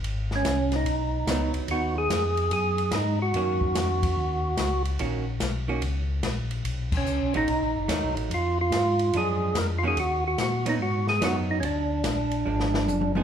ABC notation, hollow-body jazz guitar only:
X:1
M:4/4
L:1/8
Q:"Swing" 1/4=145
K:Ebm
V:1 name="Hollow-body jazz guitar"
z6 [G,CE]2 | [CE]4- [CE] z3 | [E,B,DG]4- [E,B,DG] z3 | [E,B,DG] z2 [E,B,DG] z4 |
z3 [^F,=A,^D] z2 [F,A,D]2 | z4 [F,A,=D]3 [E,B,_DG] | z3 [G,CE] z2 [G,CE]2 | z4 [F,A,=D]3 [F,CEA] |]